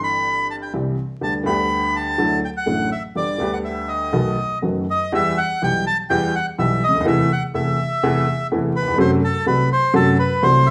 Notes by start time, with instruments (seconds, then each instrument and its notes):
Already playing: upright piano G1 G2 E3 G3 C4 G4
0.03 bandoneon B5
0.51 bandoneon A5
0.62 bandoneon G5
0.73 upright piano C2 C3 E3 G3 C4 G4
1.21 upright piano D2 D3 G3 B3 G4, bandoneon A5
1.44 upright piano D2 D3 G3 B3, bandoneon B5
1.48 upright piano G4
1.96 bandoneon A5
2.18 upright piano D2 D3 F#3 A3 E4
2.45 bandoneon G5
2.57 bandoneon F#5
2.66 upright piano A1 A2 D3 F#3 A3 E4
2.92 bandoneon E5
3.15 upright piano G1 G2 D3 G3 B3 G4, bandoneon D5
3.38 upright piano D2 D3 G3 B3 G4
3.53 bandoneon F#5
3.65 bandoneon E5
3.88 bandoneon D#5
4.13 upright piano B1 B2 D#3 A3 B3 F#4
4.62 upright piano F#1 F#2 D#3 A3 B3 F#4
4.90 bandoneon D#5
5.12 upright piano E2 E3 G3 B3 G4, bandoneon E5
5.38 bandoneon F#5
5.62 upright piano B1 B2 E3 G3 B3 G4, bandoneon G5
5.87 bandoneon A5
6.10 upright piano E2 E3 G3 B3 G4, bandoneon G5
6.35 bandoneon F#5
6.58 upright piano B1 B2 E3 G3 B3 G4, bandoneon E5
6.84 bandoneon D#5
6.89 upright piano C#2
6.95 upright piano D2
7.00 upright piano D#2
7.05 upright piano E2 C3 E3 A3 B3 E4, bandoneon E5
7.32 bandoneon F#5
7.54 upright piano E2 C3 E3 A3 B3 E4, bandoneon E5
8.03 upright piano E2 C3 E3 A3 B3 E4
8.52 upright piano E2 C3 E3 A3 B3 E4
8.76 bandoneon B4
8.82 upright piano D#2
8.88 upright piano E2
8.94 upright piano F2 F#2 C3
8.98 upright piano F#3 A3 F#4, bandoneon C5
9.24 bandoneon A4
9.46 upright piano C2 C3 F#3 A3 F#4, bandoneon B4
9.73 bandoneon C5
9.94 upright piano F#2 C3 F#3 A3 F#4, bandoneon A4
10.19 bandoneon B4
10.42 upright piano C2 C3 F#3 A3 F#4, bandoneon C5
10.67 bandoneon E5